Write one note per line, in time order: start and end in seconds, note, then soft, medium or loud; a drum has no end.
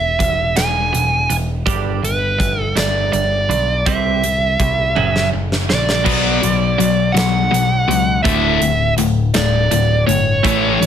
0.00 0.17 E1 medium
0.00 0.16 E2 medium
0.00 0.17 B2 medium
0.00 0.62 E5 medium
0.19 0.55 E1 medium
0.19 0.53 E2 medium
0.19 0.53 B2 medium
0.19 kick medium
0.19 closed hi-hat medium
0.56 0.92 E1 medium
0.56 0.89 E2 medium
0.56 0.90 B2 medium
0.56 1.35 G#5 medium
0.56 snare loud
0.56 closed hi-hat medium
0.93 1.28 E1 medium
0.93 1.26 E2 medium
0.93 1.26 B2 medium
0.93 closed hi-hat medium
1.29 1.65 E1 medium
1.29 1.63 E2 medium
1.29 1.63 B2 medium
1.29 closed hi-hat medium
1.66 2.01 G2 medium
1.66 2.01 D3 medium
1.66 2.01 G3 medium
1.66 kick loud
1.66 closed hi-hat medium
2.02 2.38 G1 medium
2.02 2.36 G2 medium
2.02 2.36 D3 medium
2.02 2.59 B4 medium
2.02 closed hi-hat medium
2.38 2.75 G1 medium
2.38 2.72 G2 medium
2.38 2.72 D3 medium
2.38 kick medium
2.38 closed hi-hat medium
2.59 2.77 A4 medium
2.75 3.10 G1 medium
2.75 3.09 G2 medium
2.75 3.09 D3 medium
2.75 3.12 D5 medium
2.75 snare loud
2.75 closed hi-hat medium
3.12 3.48 G1 medium
3.12 3.46 G2 medium
3.12 3.46 D3 medium
3.12 3.88 D5 medium
3.12 closed hi-hat medium
3.49 3.84 B1 medium
3.49 3.82 G2 medium
3.49 3.83 D3 medium
3.49 closed hi-hat soft
3.86 4.21 C3 medium
3.86 4.21 G3 medium
3.86 4.21 C4 medium
3.86 5.29 E5 medium
3.86 kick loud
3.86 closed hi-hat medium
4.24 4.56 C3 medium
4.24 4.56 G3 medium
4.24 closed hi-hat medium
4.60 4.94 C2 medium
4.60 4.93 C3 medium
4.60 4.93 G3 medium
4.60 kick medium
4.60 closed hi-hat medium
4.96 5.31 F#1 medium
4.96 5.30 F#2 medium
4.96 5.31 C#3 medium
4.96 5.31 F#3 medium
4.96 high tom medium
5.16 snare medium
5.33 5.68 F#1 medium
5.33 5.66 F#2 medium
5.33 5.66 C#3 medium
5.52 snare medium
5.69 6.05 A#1 medium
5.69 6.02 F#2 medium
5.69 6.02 C#3 medium
5.69 7.12 D5 medium
5.69 snare medium
5.89 snare medium
6.04 6.39 B2 medium
6.04 6.40 F#3 medium
6.04 6.40 B3 medium
6.04 kick loud
6.04 crash loud
6.41 6.76 B1 medium
6.41 6.75 B2 medium
6.41 6.75 F#3 medium
6.41 closed hi-hat medium
6.78 7.12 B1 medium
6.78 7.11 B2 medium
6.78 7.12 F#3 medium
6.78 closed hi-hat medium
7.12 7.48 B1 medium
7.12 7.48 B2 medium
7.12 7.48 F#3 medium
7.12 8.22 F#5 loud
7.17 snare loud
7.17 closed hi-hat medium
7.51 7.85 B1 medium
7.51 7.85 B2 medium
7.51 7.85 F#3 medium
7.51 closed hi-hat medium
7.88 8.21 C#2 medium
7.88 8.21 B2 medium
7.88 8.21 F#3 medium
7.88 closed hi-hat medium
8.23 8.58 D1 medium
8.23 8.59 D2 medium
8.23 8.59 A2 medium
8.23 8.60 D3 medium
8.23 8.93 E5 medium
8.23 kick loud
8.23 closed hi-hat medium
8.61 8.94 D1 medium
8.61 8.95 D2 medium
8.61 8.95 A2 medium
8.61 closed hi-hat medium
8.97 9.30 D1 medium
8.97 9.31 D2 medium
8.97 9.32 A2 medium
8.97 closed hi-hat medium
9.34 9.68 D1 medium
9.34 9.68 D2 medium
9.34 9.68 A2 medium
9.34 10.06 D5 medium
9.34 snare loud
9.34 closed hi-hat medium
9.71 10.04 D1 medium
9.71 10.04 D2 medium
9.71 10.04 A2 medium
9.71 closed hi-hat medium
10.06 10.41 G1 medium
10.06 10.40 D2 medium
10.06 10.40 A2 medium
10.06 10.86 C#5 medium
10.06 closed hi-hat medium
10.43 10.77 A1 medium
10.43 10.78 A2 medium
10.43 10.78 E3 medium
10.43 10.79 A3 loud
10.43 kick loud
10.43 closed hi-hat medium
10.80 10.86 A1 medium
10.80 10.86 A2 medium
10.80 10.86 E3 medium
10.80 closed hi-hat medium